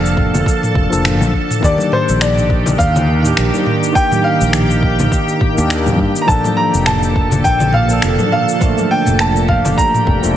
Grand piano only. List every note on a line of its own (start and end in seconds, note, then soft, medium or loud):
0.00 1.30 F5 loud
1.64 1.94 D5 loud
1.93 2.23 C5 medium
2.21 2.81 D5 medium
2.78 3.62 F5 loud
3.95 4.26 G5 loud
4.24 5.95 F5 loud
6.22 6.28 A#5 medium
6.28 6.55 A5 loud
6.57 6.88 A#5 loud
6.86 7.41 A5 loud
7.44 7.72 G5 loud
7.74 8.28 F5 medium
8.32 8.93 F5 loud
8.91 9.18 G5 medium
9.20 9.50 A5 medium
9.48 9.79 F5 medium
9.78 10.37 A#5 loud